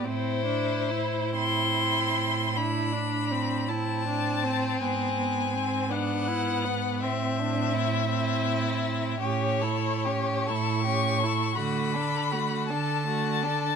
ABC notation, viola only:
X:1
M:12/8
L:1/8
Q:3/8=53
K:Ador
V:1 name="Viola"
C D E4 E D C E D C | B, B, C D E B, C3 C3 | ^C E C E C E A, D A, D A, D |]